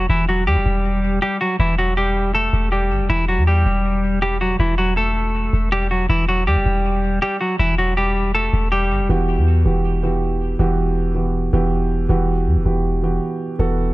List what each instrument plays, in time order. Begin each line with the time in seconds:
0.10 808-style bass E1, clean electric guitar E3 E4
0.29 clean electric guitar F#3 F#4
0.47 808-style bass E2, clean electric guitar G3 G4
0.56 808-style bass E1
0.66 808-style bass E1
1.22 clean electric guitar G3 G4
1.41 clean electric guitar F#3 F#4
1.59 808-style bass E1, clean electric guitar E3 E4
1.78 clean electric guitar F#3 F#4
1.97 clean electric guitar G3 G4
2.35 clean electric guitar A3 A4
2.53 808-style bass E1
2.72 clean electric guitar G3 G4
2.91 808-style bass G1
3.00 808-style bass E1
3.10 808-style bass E1, clean electric guitar E3 E4
3.28 clean electric guitar F#3 F#4
3.38 808-style bass E2
3.47 clean electric guitar G3 G4
3.66 808-style bass E1
4.22 clean electric guitar G3 G4
4.41 clean electric guitar F#3 F#4
4.59 808-style bass E1, clean electric guitar E3 E4
4.78 clean electric guitar F#3 F#4
4.97 clean electric guitar A3 A4
5.53 808-style bass E1
5.72 clean electric guitar G3 G4
5.91 clean electric guitar F#3 F#4
6.09 808-style bass E1, clean electric guitar E3 E4
6.28 clean electric guitar F#3 F#4
6.47 808-style bass E2, clean electric guitar G3 G4
6.56 808-style bass E1
6.66 808-style bass E1
7.22 clean electric guitar G3 G4
7.41 clean electric guitar F#3 F#4
7.59 808-style bass E1, clean electric guitar E3 E4
7.78 clean electric guitar F#3 F#4
7.97 clean electric guitar G3 G4
8.35 clean electric guitar A3 A4
8.53 808-style bass E1
8.72 clean electric guitar G3 G4
8.91 808-style bass G1
9.00 808-style bass E1
9.09 808-style bass E1, grand piano E3 B3 F#4 G4
9.38 808-style bass E2
9.65 808-style bass E1, grand piano E3 B3 F#4 G4
10.03 grand piano E3 B3 F#4 G4
10.59 808-style bass E1, grand piano E3 B3 F#4 G4
11.15 grand piano E3 B3 F#4 G4
11.53 808-style bass E1, grand piano E3 B3 F#4 G4
12.09 808-style bass E1, grand piano E3 B3 F#4 G4
12.47 808-style bass E2
12.56 808-style bass E1
12.65 808-style bass E1, grand piano E3 B3 F#4 G4
13.03 grand piano E3 B3 F#4 G4
13.59 808-style bass E1, grand piano E3 B3 F#4 A4